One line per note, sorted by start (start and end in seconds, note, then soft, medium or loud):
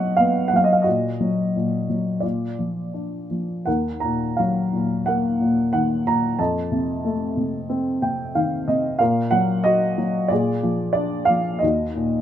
0.00 0.81 B2 medium
0.00 0.53 F#3 soft
0.00 0.14 D#4 medium
0.00 0.81 F#4 soft
0.00 0.64 D#5 medium
0.00 0.15 F#5 medium
0.17 0.84 B3 soft
0.17 0.50 F5 medium
0.48 0.58 F#5 medium
0.53 0.85 F#3 soft
0.53 0.66 F5 medium
0.64 0.75 D#5 medium
0.73 0.84 F5 medium
0.82 2.19 F#4 soft
0.82 2.26 D#5 medium
0.86 1.55 A#2 soft
1.21 1.88 F#3 soft
1.56 2.21 A#2 soft
1.90 2.23 F#3 soft
2.20 3.63 A#2 soft
2.20 3.63 F4 soft
2.20 3.25 D5 soft
2.59 3.29 F3 soft
2.94 3.65 D4 soft
3.31 3.66 F3 soft
3.66 6.35 D#2 soft
3.66 5.03 A#4 soft
3.66 4.03 F#5 medium
4.00 4.71 A#2 soft
4.00 4.38 A#5 medium
4.37 5.70 F#3 soft
4.37 5.08 F5 medium
4.73 5.39 A#2 soft
5.06 6.35 A#3 soft
5.06 6.36 A#4 soft
5.06 5.71 F#5 medium
5.40 6.04 A#2 soft
5.73 6.37 D#3 soft
5.73 6.07 F#5 medium
6.06 6.38 A#2 soft
6.06 6.37 A#5 medium
6.39 8.96 F2 soft
6.39 8.31 D#5 soft
6.39 8.31 A5 medium
6.72 7.35 C3 soft
7.05 8.31 A3 soft
7.37 8.01 C3 soft
7.70 8.96 C4 soft
8.02 8.66 C3 soft
8.02 8.33 G5 medium
8.35 8.98 D#3 soft
8.35 8.66 F5 medium
8.68 8.99 C3 soft
8.68 8.98 D#5 medium
8.99 10.27 A#2 medium
8.99 10.27 A#4 soft
8.99 9.33 F5 medium
9.31 9.96 F#3 soft
9.31 9.62 F#5 medium
9.64 10.29 F#4 medium
9.64 10.32 D#5 medium
9.98 10.30 F#3 soft
10.28 11.58 A#2 medium
10.28 10.91 D5 medium
10.32 11.59 G#4 medium
10.63 11.28 F3 soft
10.93 11.60 D4 soft
10.93 11.28 D5 medium
11.25 11.61 F3 soft
11.25 11.62 F5 medium
11.59 12.21 D#2 soft
11.59 12.21 D#5 medium
11.63 12.21 F#4 soft
11.95 12.21 A#2 soft